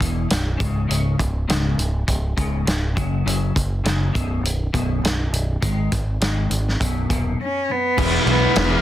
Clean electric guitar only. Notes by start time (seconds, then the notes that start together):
0.00 E2 B2 E3
0.28 E2 B2
0.57 C#2 G#2 C#3
0.87 C#2 G#2 C#3
1.18 C#2 G#2
1.47 C#2 G#2 C#3
1.78 C#2 G#2
2.07 C#2 G#2
2.36 C#2 G#2 C#3
2.65 C#2 G#2
2.95 F#2 C#3 F#3
3.25 F#2 C#3 F#3
3.55 F#2 C#3
3.84 F#2 C#3 F#3
4.13 B1 F#2 B2
4.43 B1 F#2
4.73 B1 F#2 B2
5.04 B1 F#2
5.33 B1 F#2
5.61 G#2 D#3 G#3
5.92 G#2 D#3
6.21 G#2 D#3 G#3
6.51 G#2 D#3
6.80 B1 F#2 B2
7.09 B1 F#2 B2
7.39 B1 F#2
7.68 B1 F#2